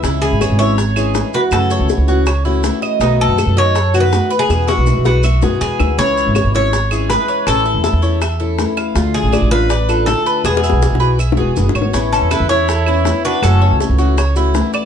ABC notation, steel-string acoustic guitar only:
X:1
M:4/4
L:1/8
Q:1/4=161
K:A
V:1 name="Steel-string acoustic guitar"
[C,E,G,CE]2 [E,G,CE] [E,G,CE] z [E,G,CE] [E,G,CE]2 | [C,E,A,CF]2 [E,A,CF] [E,A,CF] z [E,A,CF] [E,A,CF]2 | [B,,^D,A,B,F]2 [D,A,B,F] [D,A,B,F] z [D,A,B,F] [D,A,B,F]2 | [B,,E,G,B,F]2 [E,G,B,F] [E,G,B,F] z [E,G,B,F] [E,G,B,F]2 |
[C,E,G,CE]2 [E,G,CE] [E,G,CE] z [E,G,CE] [E,G,CE]2 | [E,A,CE]2 [E,A,CE] [A,CE] z [A,CE] [E,A,CE]2 | [D,A,D=F]2 [D,A,DF] [A,DF] z [A,DF] [D,A,DF]2 | [B,,E,G,B,F]2 [E,F] [E,G,B,F] z [E,G,B,F] [E,G,B,F]2 |
[E,B,CE]2 [E,B,CE] [B,CE] z [B,CE] [E,B,CE]2 | [C,E,A,CF]2 [E,A,CF] [E,A,CF] z [E,A,CF] [E,A,CF]2 |]